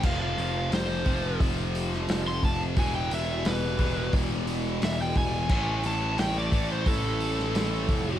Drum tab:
CC |x---------------|----------------|x---------------|
HH |--o-o-o-o-o-o-o-|o-o-o-o-o-o-o-o-|--o-o-o-o-o-o-o-|
SD |----o------oo---|----o-------o---|----o------oo-o-|
BD |o-----o-o-----o-|o-----o-o-----o-|o-----o-o-----o-|